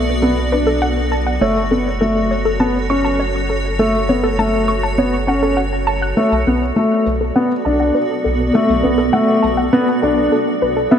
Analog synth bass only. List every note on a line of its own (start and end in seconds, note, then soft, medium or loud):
0.00 1.39 B1 medium
1.41 6.14 F#1 medium
6.32 6.45 B1 medium
6.47 6.72 B1 medium
7.07 7.32 B1 medium
7.66 7.91 B1 medium
8.25 8.50 B1 medium
8.69 8.82 B1 loud
8.85 9.10 B1 medium
9.44 9.69 B1 medium
10.03 10.28 B1 loud
10.62 10.88 B1 loud